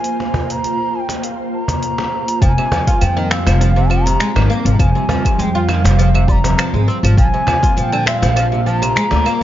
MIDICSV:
0, 0, Header, 1, 7, 480
1, 0, Start_track
1, 0, Key_signature, -4, "minor"
1, 0, Tempo, 594059
1, 38, Time_signature, 4, 2, 24, 8
1, 7619, End_track
2, 0, Start_track
2, 0, Title_t, "Bansuri"
2, 0, Program_c, 0, 73
2, 0, Note_on_c, 0, 80, 96
2, 416, Note_on_c, 0, 82, 90
2, 428, Note_off_c, 0, 80, 0
2, 772, Note_on_c, 0, 80, 74
2, 784, Note_off_c, 0, 82, 0
2, 809, Note_on_c, 0, 79, 81
2, 817, Note_off_c, 0, 80, 0
2, 941, Note_off_c, 0, 79, 0
2, 941, Note_on_c, 0, 79, 55
2, 1000, Note_on_c, 0, 77, 73
2, 1012, Note_off_c, 0, 79, 0
2, 1231, Note_off_c, 0, 77, 0
2, 1236, Note_on_c, 0, 82, 91
2, 1952, Note_on_c, 0, 80, 106
2, 1964, Note_off_c, 0, 82, 0
2, 2434, Note_on_c, 0, 79, 93
2, 2446, Note_off_c, 0, 80, 0
2, 2674, Note_on_c, 0, 77, 96
2, 2686, Note_off_c, 0, 79, 0
2, 3154, Note_on_c, 0, 82, 101
2, 3166, Note_off_c, 0, 77, 0
2, 3573, Note_off_c, 0, 82, 0
2, 3822, Note_on_c, 0, 82, 67
2, 3882, Note_on_c, 0, 80, 96
2, 3894, Note_off_c, 0, 82, 0
2, 4364, Note_on_c, 0, 79, 88
2, 4377, Note_off_c, 0, 80, 0
2, 4597, Note_on_c, 0, 77, 90
2, 4609, Note_off_c, 0, 79, 0
2, 5078, Note_on_c, 0, 84, 86
2, 5090, Note_off_c, 0, 77, 0
2, 5105, Note_on_c, 0, 82, 93
2, 5113, Note_off_c, 0, 84, 0
2, 5581, Note_off_c, 0, 82, 0
2, 5801, Note_on_c, 0, 80, 103
2, 6287, Note_off_c, 0, 80, 0
2, 6287, Note_on_c, 0, 80, 92
2, 6322, Note_on_c, 0, 79, 100
2, 6330, Note_off_c, 0, 80, 0
2, 6519, Note_off_c, 0, 79, 0
2, 6524, Note_on_c, 0, 77, 102
2, 7004, Note_on_c, 0, 81, 105
2, 7016, Note_off_c, 0, 77, 0
2, 7125, Note_off_c, 0, 81, 0
2, 7125, Note_on_c, 0, 82, 105
2, 7619, Note_off_c, 0, 82, 0
2, 7619, End_track
3, 0, Start_track
3, 0, Title_t, "Ambient pad"
3, 0, Program_c, 1, 92
3, 0, Note_on_c, 1, 58, 74
3, 0, Note_on_c, 1, 65, 69
3, 0, Note_on_c, 1, 72, 80
3, 1925, Note_off_c, 1, 58, 0
3, 1926, Note_off_c, 1, 72, 0
3, 1928, Note_off_c, 1, 65, 0
3, 1949, Note_on_c, 1, 55, 91
3, 1949, Note_on_c, 1, 60, 72
3, 1950, Note_on_c, 1, 53, 80
3, 5761, Note_off_c, 1, 55, 0
3, 5761, Note_off_c, 1, 60, 0
3, 5762, Note_off_c, 1, 53, 0
3, 5795, Note_on_c, 1, 72, 89
3, 5796, Note_on_c, 1, 58, 77
3, 5797, Note_on_c, 1, 65, 75
3, 7619, Note_off_c, 1, 58, 0
3, 7619, Note_off_c, 1, 65, 0
3, 7619, Note_off_c, 1, 72, 0
3, 7619, End_track
4, 0, Start_track
4, 0, Title_t, "Oud"
4, 0, Program_c, 2, 24
4, 1956, Note_on_c, 2, 53, 80
4, 2030, Note_off_c, 2, 53, 0
4, 2085, Note_on_c, 2, 48, 70
4, 2149, Note_off_c, 2, 48, 0
4, 2196, Note_on_c, 2, 53, 73
4, 2270, Note_off_c, 2, 53, 0
4, 2321, Note_on_c, 2, 65, 74
4, 2430, Note_off_c, 2, 65, 0
4, 2432, Note_on_c, 2, 53, 78
4, 2550, Note_off_c, 2, 53, 0
4, 2559, Note_on_c, 2, 51, 95
4, 2669, Note_off_c, 2, 51, 0
4, 2672, Note_on_c, 2, 60, 77
4, 2797, Note_off_c, 2, 60, 0
4, 2800, Note_on_c, 2, 53, 77
4, 2904, Note_off_c, 2, 53, 0
4, 2915, Note_on_c, 2, 53, 84
4, 2989, Note_off_c, 2, 53, 0
4, 3041, Note_on_c, 2, 48, 71
4, 3107, Note_off_c, 2, 48, 0
4, 3150, Note_on_c, 2, 53, 73
4, 3276, Note_off_c, 2, 53, 0
4, 3279, Note_on_c, 2, 48, 76
4, 3389, Note_off_c, 2, 48, 0
4, 3393, Note_on_c, 2, 56, 102
4, 3468, Note_off_c, 2, 56, 0
4, 3521, Note_on_c, 2, 51, 96
4, 3630, Note_off_c, 2, 51, 0
4, 3634, Note_on_c, 2, 58, 101
4, 3751, Note_off_c, 2, 58, 0
4, 3763, Note_on_c, 2, 53, 73
4, 3863, Note_off_c, 2, 53, 0
4, 3873, Note_on_c, 2, 53, 76
4, 3948, Note_off_c, 2, 53, 0
4, 4002, Note_on_c, 2, 48, 72
4, 4068, Note_off_c, 2, 48, 0
4, 4115, Note_on_c, 2, 53, 78
4, 4238, Note_off_c, 2, 53, 0
4, 4246, Note_on_c, 2, 48, 73
4, 4352, Note_off_c, 2, 48, 0
4, 4355, Note_on_c, 2, 56, 91
4, 4429, Note_off_c, 2, 56, 0
4, 4484, Note_on_c, 2, 65, 94
4, 4591, Note_off_c, 2, 65, 0
4, 4594, Note_on_c, 2, 51, 80
4, 4711, Note_off_c, 2, 51, 0
4, 4723, Note_on_c, 2, 53, 73
4, 4825, Note_off_c, 2, 53, 0
4, 4837, Note_on_c, 2, 53, 92
4, 4911, Note_off_c, 2, 53, 0
4, 4965, Note_on_c, 2, 48, 76
4, 5029, Note_off_c, 2, 48, 0
4, 5079, Note_on_c, 2, 55, 74
4, 5152, Note_off_c, 2, 55, 0
4, 5206, Note_on_c, 2, 48, 75
4, 5312, Note_off_c, 2, 48, 0
4, 5317, Note_on_c, 2, 53, 84
4, 5433, Note_off_c, 2, 53, 0
4, 5444, Note_on_c, 2, 56, 67
4, 5546, Note_off_c, 2, 56, 0
4, 5558, Note_on_c, 2, 60, 78
4, 5631, Note_off_c, 2, 60, 0
4, 5686, Note_on_c, 2, 53, 72
4, 5787, Note_off_c, 2, 53, 0
4, 5798, Note_on_c, 2, 53, 79
4, 5871, Note_off_c, 2, 53, 0
4, 5928, Note_on_c, 2, 48, 74
4, 5991, Note_off_c, 2, 48, 0
4, 6036, Note_on_c, 2, 53, 79
4, 6110, Note_off_c, 2, 53, 0
4, 6162, Note_on_c, 2, 65, 72
4, 6270, Note_off_c, 2, 65, 0
4, 6276, Note_on_c, 2, 53, 79
4, 6392, Note_off_c, 2, 53, 0
4, 6403, Note_on_c, 2, 50, 100
4, 6511, Note_off_c, 2, 50, 0
4, 6513, Note_on_c, 2, 60, 74
4, 6637, Note_off_c, 2, 60, 0
4, 6644, Note_on_c, 2, 53, 80
4, 6746, Note_off_c, 2, 53, 0
4, 6757, Note_on_c, 2, 53, 88
4, 6830, Note_off_c, 2, 53, 0
4, 6884, Note_on_c, 2, 48, 72
4, 6949, Note_off_c, 2, 48, 0
4, 7000, Note_on_c, 2, 53, 76
4, 7120, Note_off_c, 2, 53, 0
4, 7126, Note_on_c, 2, 48, 77
4, 7232, Note_off_c, 2, 48, 0
4, 7239, Note_on_c, 2, 56, 106
4, 7311, Note_off_c, 2, 56, 0
4, 7364, Note_on_c, 2, 50, 96
4, 7472, Note_off_c, 2, 50, 0
4, 7480, Note_on_c, 2, 58, 102
4, 7594, Note_off_c, 2, 58, 0
4, 7619, End_track
5, 0, Start_track
5, 0, Title_t, "Upright bass"
5, 0, Program_c, 3, 32
5, 1954, Note_on_c, 3, 29, 91
5, 2052, Note_off_c, 3, 29, 0
5, 2437, Note_on_c, 3, 41, 91
5, 2802, Note_on_c, 3, 29, 92
5, 2814, Note_off_c, 3, 41, 0
5, 3350, Note_off_c, 3, 29, 0
5, 3520, Note_on_c, 3, 32, 78
5, 3606, Note_off_c, 3, 32, 0
5, 3759, Note_on_c, 3, 32, 103
5, 3846, Note_off_c, 3, 32, 0
5, 3875, Note_on_c, 3, 29, 96
5, 3972, Note_off_c, 3, 29, 0
5, 4351, Note_on_c, 3, 41, 94
5, 4721, Note_on_c, 3, 29, 93
5, 4734, Note_off_c, 3, 41, 0
5, 5270, Note_off_c, 3, 29, 0
5, 5441, Note_on_c, 3, 32, 83
5, 5527, Note_off_c, 3, 32, 0
5, 5681, Note_on_c, 3, 32, 104
5, 5767, Note_off_c, 3, 32, 0
5, 5799, Note_on_c, 3, 34, 97
5, 5894, Note_off_c, 3, 34, 0
5, 6281, Note_on_c, 3, 46, 91
5, 6645, Note_on_c, 3, 34, 93
5, 6657, Note_off_c, 3, 46, 0
5, 7192, Note_off_c, 3, 34, 0
5, 7366, Note_on_c, 3, 38, 76
5, 7449, Note_off_c, 3, 38, 0
5, 7619, End_track
6, 0, Start_track
6, 0, Title_t, "Cajon"
6, 162, Note_on_c, 9, 38, 54
6, 243, Note_off_c, 9, 38, 0
6, 274, Note_on_c, 9, 36, 85
6, 355, Note_off_c, 9, 36, 0
6, 879, Note_on_c, 9, 38, 63
6, 960, Note_off_c, 9, 38, 0
6, 1358, Note_on_c, 9, 36, 79
6, 1439, Note_off_c, 9, 36, 0
6, 1602, Note_on_c, 9, 38, 75
6, 1683, Note_off_c, 9, 38, 0
6, 2195, Note_on_c, 9, 36, 93
6, 2197, Note_on_c, 9, 38, 72
6, 2276, Note_off_c, 9, 36, 0
6, 2278, Note_off_c, 9, 38, 0
6, 2672, Note_on_c, 9, 38, 63
6, 2753, Note_off_c, 9, 38, 0
6, 2800, Note_on_c, 9, 38, 77
6, 2881, Note_off_c, 9, 38, 0
6, 3523, Note_on_c, 9, 38, 91
6, 3604, Note_off_c, 9, 38, 0
6, 4111, Note_on_c, 9, 36, 97
6, 4115, Note_on_c, 9, 38, 69
6, 4192, Note_off_c, 9, 36, 0
6, 4196, Note_off_c, 9, 38, 0
6, 4594, Note_on_c, 9, 38, 69
6, 4675, Note_off_c, 9, 38, 0
6, 4729, Note_on_c, 9, 38, 81
6, 4810, Note_off_c, 9, 38, 0
6, 5204, Note_on_c, 9, 36, 89
6, 5285, Note_off_c, 9, 36, 0
6, 6034, Note_on_c, 9, 38, 69
6, 6041, Note_on_c, 9, 36, 98
6, 6114, Note_off_c, 9, 38, 0
6, 6122, Note_off_c, 9, 36, 0
6, 6515, Note_on_c, 9, 38, 55
6, 6596, Note_off_c, 9, 38, 0
6, 6648, Note_on_c, 9, 38, 87
6, 6728, Note_off_c, 9, 38, 0
6, 7359, Note_on_c, 9, 38, 78
6, 7440, Note_off_c, 9, 38, 0
6, 7619, End_track
7, 0, Start_track
7, 0, Title_t, "Drums"
7, 33, Note_on_c, 9, 46, 35
7, 114, Note_off_c, 9, 46, 0
7, 404, Note_on_c, 9, 46, 43
7, 485, Note_off_c, 9, 46, 0
7, 519, Note_on_c, 9, 46, 37
7, 600, Note_off_c, 9, 46, 0
7, 886, Note_on_c, 9, 46, 44
7, 967, Note_off_c, 9, 46, 0
7, 998, Note_on_c, 9, 46, 39
7, 1078, Note_off_c, 9, 46, 0
7, 1364, Note_on_c, 9, 46, 48
7, 1444, Note_off_c, 9, 46, 0
7, 1475, Note_on_c, 9, 46, 36
7, 1556, Note_off_c, 9, 46, 0
7, 1843, Note_on_c, 9, 46, 47
7, 1924, Note_off_c, 9, 46, 0
7, 1953, Note_on_c, 9, 36, 122
7, 1957, Note_on_c, 9, 46, 43
7, 1963, Note_on_c, 9, 69, 45
7, 2034, Note_off_c, 9, 36, 0
7, 2037, Note_off_c, 9, 46, 0
7, 2044, Note_off_c, 9, 69, 0
7, 2086, Note_on_c, 9, 75, 76
7, 2092, Note_on_c, 9, 69, 22
7, 2167, Note_off_c, 9, 75, 0
7, 2173, Note_off_c, 9, 69, 0
7, 2200, Note_on_c, 9, 69, 75
7, 2281, Note_off_c, 9, 69, 0
7, 2321, Note_on_c, 9, 36, 102
7, 2323, Note_on_c, 9, 46, 53
7, 2329, Note_on_c, 9, 69, 32
7, 2402, Note_off_c, 9, 36, 0
7, 2404, Note_off_c, 9, 46, 0
7, 2410, Note_off_c, 9, 69, 0
7, 2435, Note_on_c, 9, 46, 42
7, 2435, Note_on_c, 9, 75, 77
7, 2442, Note_on_c, 9, 69, 42
7, 2516, Note_off_c, 9, 46, 0
7, 2516, Note_off_c, 9, 75, 0
7, 2523, Note_off_c, 9, 69, 0
7, 2569, Note_on_c, 9, 69, 21
7, 2650, Note_off_c, 9, 69, 0
7, 2675, Note_on_c, 9, 26, 76
7, 2682, Note_on_c, 9, 69, 74
7, 2756, Note_off_c, 9, 26, 0
7, 2763, Note_off_c, 9, 69, 0
7, 2805, Note_on_c, 9, 46, 53
7, 2805, Note_on_c, 9, 75, 76
7, 2812, Note_on_c, 9, 69, 32
7, 2886, Note_off_c, 9, 46, 0
7, 2886, Note_off_c, 9, 75, 0
7, 2893, Note_off_c, 9, 69, 0
7, 2919, Note_on_c, 9, 46, 49
7, 2925, Note_on_c, 9, 69, 46
7, 2999, Note_off_c, 9, 46, 0
7, 3006, Note_off_c, 9, 69, 0
7, 3052, Note_on_c, 9, 69, 22
7, 3133, Note_off_c, 9, 69, 0
7, 3158, Note_on_c, 9, 75, 78
7, 3164, Note_on_c, 9, 69, 70
7, 3238, Note_off_c, 9, 75, 0
7, 3245, Note_off_c, 9, 69, 0
7, 3288, Note_on_c, 9, 46, 60
7, 3294, Note_on_c, 9, 69, 36
7, 3368, Note_off_c, 9, 46, 0
7, 3375, Note_off_c, 9, 69, 0
7, 3397, Note_on_c, 9, 26, 73
7, 3397, Note_on_c, 9, 46, 46
7, 3404, Note_on_c, 9, 69, 42
7, 3478, Note_off_c, 9, 26, 0
7, 3478, Note_off_c, 9, 46, 0
7, 3484, Note_off_c, 9, 69, 0
7, 3524, Note_on_c, 9, 75, 77
7, 3531, Note_on_c, 9, 69, 21
7, 3605, Note_off_c, 9, 75, 0
7, 3612, Note_off_c, 9, 69, 0
7, 3644, Note_on_c, 9, 69, 75
7, 3725, Note_off_c, 9, 69, 0
7, 3764, Note_on_c, 9, 46, 56
7, 3771, Note_on_c, 9, 69, 31
7, 3845, Note_off_c, 9, 46, 0
7, 3852, Note_off_c, 9, 69, 0
7, 3874, Note_on_c, 9, 36, 120
7, 3877, Note_on_c, 9, 46, 47
7, 3877, Note_on_c, 9, 75, 73
7, 3883, Note_on_c, 9, 69, 44
7, 3955, Note_off_c, 9, 36, 0
7, 3958, Note_off_c, 9, 46, 0
7, 3958, Note_off_c, 9, 75, 0
7, 3964, Note_off_c, 9, 69, 0
7, 4011, Note_on_c, 9, 69, 24
7, 4092, Note_off_c, 9, 69, 0
7, 4123, Note_on_c, 9, 69, 77
7, 4204, Note_off_c, 9, 69, 0
7, 4243, Note_on_c, 9, 36, 103
7, 4248, Note_on_c, 9, 46, 53
7, 4248, Note_on_c, 9, 75, 71
7, 4255, Note_on_c, 9, 69, 30
7, 4323, Note_off_c, 9, 36, 0
7, 4329, Note_off_c, 9, 46, 0
7, 4329, Note_off_c, 9, 75, 0
7, 4336, Note_off_c, 9, 69, 0
7, 4360, Note_on_c, 9, 46, 44
7, 4366, Note_on_c, 9, 69, 43
7, 4440, Note_off_c, 9, 46, 0
7, 4447, Note_off_c, 9, 69, 0
7, 4496, Note_on_c, 9, 69, 22
7, 4577, Note_off_c, 9, 69, 0
7, 4598, Note_on_c, 9, 75, 67
7, 4605, Note_on_c, 9, 69, 77
7, 4679, Note_off_c, 9, 75, 0
7, 4686, Note_off_c, 9, 69, 0
7, 4730, Note_on_c, 9, 46, 51
7, 4811, Note_off_c, 9, 46, 0
7, 4843, Note_on_c, 9, 46, 43
7, 4850, Note_on_c, 9, 69, 47
7, 4924, Note_off_c, 9, 46, 0
7, 4931, Note_off_c, 9, 69, 0
7, 4971, Note_on_c, 9, 75, 81
7, 4977, Note_on_c, 9, 69, 23
7, 5051, Note_off_c, 9, 75, 0
7, 5058, Note_off_c, 9, 69, 0
7, 5076, Note_on_c, 9, 36, 101
7, 5085, Note_on_c, 9, 69, 81
7, 5157, Note_off_c, 9, 36, 0
7, 5165, Note_off_c, 9, 69, 0
7, 5209, Note_on_c, 9, 46, 59
7, 5215, Note_on_c, 9, 69, 35
7, 5290, Note_off_c, 9, 46, 0
7, 5296, Note_off_c, 9, 69, 0
7, 5323, Note_on_c, 9, 26, 75
7, 5323, Note_on_c, 9, 46, 45
7, 5323, Note_on_c, 9, 75, 68
7, 5330, Note_on_c, 9, 69, 43
7, 5404, Note_off_c, 9, 26, 0
7, 5404, Note_off_c, 9, 46, 0
7, 5404, Note_off_c, 9, 75, 0
7, 5410, Note_off_c, 9, 69, 0
7, 5457, Note_on_c, 9, 69, 23
7, 5537, Note_off_c, 9, 69, 0
7, 5571, Note_on_c, 9, 69, 77
7, 5652, Note_off_c, 9, 69, 0
7, 5693, Note_on_c, 9, 46, 54
7, 5693, Note_on_c, 9, 75, 72
7, 5699, Note_on_c, 9, 69, 33
7, 5774, Note_off_c, 9, 46, 0
7, 5774, Note_off_c, 9, 75, 0
7, 5780, Note_off_c, 9, 69, 0
7, 5797, Note_on_c, 9, 36, 122
7, 5803, Note_on_c, 9, 46, 42
7, 5810, Note_on_c, 9, 69, 43
7, 5878, Note_off_c, 9, 36, 0
7, 5884, Note_off_c, 9, 46, 0
7, 5891, Note_off_c, 9, 69, 0
7, 5940, Note_on_c, 9, 69, 23
7, 6021, Note_off_c, 9, 69, 0
7, 6042, Note_on_c, 9, 75, 72
7, 6049, Note_on_c, 9, 69, 76
7, 6123, Note_off_c, 9, 75, 0
7, 6130, Note_off_c, 9, 69, 0
7, 6166, Note_on_c, 9, 36, 110
7, 6171, Note_on_c, 9, 46, 49
7, 6178, Note_on_c, 9, 69, 35
7, 6247, Note_off_c, 9, 36, 0
7, 6252, Note_off_c, 9, 46, 0
7, 6258, Note_off_c, 9, 69, 0
7, 6283, Note_on_c, 9, 46, 42
7, 6289, Note_on_c, 9, 69, 46
7, 6364, Note_off_c, 9, 46, 0
7, 6370, Note_off_c, 9, 69, 0
7, 6410, Note_on_c, 9, 75, 75
7, 6417, Note_on_c, 9, 69, 23
7, 6491, Note_off_c, 9, 75, 0
7, 6498, Note_off_c, 9, 69, 0
7, 6521, Note_on_c, 9, 26, 76
7, 6528, Note_on_c, 9, 69, 78
7, 6602, Note_off_c, 9, 26, 0
7, 6609, Note_off_c, 9, 69, 0
7, 6649, Note_on_c, 9, 46, 50
7, 6656, Note_on_c, 9, 69, 33
7, 6730, Note_off_c, 9, 46, 0
7, 6737, Note_off_c, 9, 69, 0
7, 6762, Note_on_c, 9, 46, 44
7, 6762, Note_on_c, 9, 75, 75
7, 6768, Note_on_c, 9, 69, 46
7, 6842, Note_off_c, 9, 46, 0
7, 6842, Note_off_c, 9, 75, 0
7, 6849, Note_off_c, 9, 69, 0
7, 6896, Note_on_c, 9, 69, 23
7, 6977, Note_off_c, 9, 69, 0
7, 7008, Note_on_c, 9, 69, 78
7, 7089, Note_off_c, 9, 69, 0
7, 7131, Note_on_c, 9, 46, 57
7, 7131, Note_on_c, 9, 75, 76
7, 7138, Note_on_c, 9, 69, 35
7, 7212, Note_off_c, 9, 46, 0
7, 7212, Note_off_c, 9, 75, 0
7, 7219, Note_off_c, 9, 69, 0
7, 7246, Note_on_c, 9, 26, 82
7, 7246, Note_on_c, 9, 46, 41
7, 7253, Note_on_c, 9, 69, 45
7, 7327, Note_off_c, 9, 26, 0
7, 7327, Note_off_c, 9, 46, 0
7, 7333, Note_off_c, 9, 69, 0
7, 7380, Note_on_c, 9, 69, 22
7, 7461, Note_off_c, 9, 69, 0
7, 7483, Note_on_c, 9, 75, 75
7, 7490, Note_on_c, 9, 69, 82
7, 7564, Note_off_c, 9, 75, 0
7, 7571, Note_off_c, 9, 69, 0
7, 7619, End_track
0, 0, End_of_file